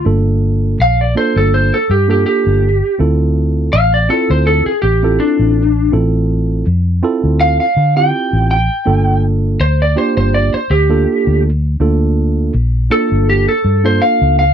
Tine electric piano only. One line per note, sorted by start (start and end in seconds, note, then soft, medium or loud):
0.05 0.77 A#3 medium
0.05 0.77 D4 medium
0.05 0.77 F4 medium
0.05 0.78 A4 medium
1.15 1.76 A#3 medium
1.15 1.77 D4 medium
1.15 1.77 F4 medium
1.15 1.77 A4 medium
2.08 2.67 A#3 medium
2.08 2.67 D4 medium
2.08 2.68 F4 medium
2.08 2.68 A4 medium
2.99 3.71 C4 medium
2.99 3.71 E4 medium
2.99 3.72 F4 medium
2.99 3.72 A4 medium
4.09 4.70 C4 medium
4.09 4.71 E4 medium
4.09 4.71 F4 medium
4.09 4.71 A4 medium
5.03 5.61 C4 medium
5.03 5.62 E4 medium
5.03 5.62 F4 medium
5.03 5.62 A4 medium
5.92 6.64 C4 medium
5.92 6.65 E4 medium
5.92 6.65 F4 medium
5.92 6.65 A4 medium
7.03 7.64 C4 medium
7.03 7.64 E4 medium
7.03 7.64 F4 medium
7.03 7.65 A4 medium
7.96 8.55 C4 medium
7.96 8.55 E4 medium
7.96 8.55 F4 medium
7.96 8.55 G4 medium
8.85 9.58 A#3 medium
8.85 9.58 D4 medium
8.85 9.58 F4 medium
8.85 9.59 A4 medium
9.96 10.57 A#3 medium
9.96 10.58 D4 medium
9.96 10.58 F4 medium
9.96 10.58 G4 medium
10.89 11.49 A#3 medium
10.89 11.49 D4 medium
10.89 11.49 F4 medium
10.89 11.49 A4 medium
11.80 12.52 A#3 medium
11.80 12.52 D4 medium
11.80 12.53 F4 medium
11.80 12.53 A4 medium
12.91 13.52 A#3 medium
12.91 13.52 D4 medium
12.91 13.52 F4 medium
12.91 13.52 A4 medium
13.84 14.43 A#3 medium
13.84 14.43 D4 medium
13.84 14.43 F4 medium
13.84 14.43 A4 medium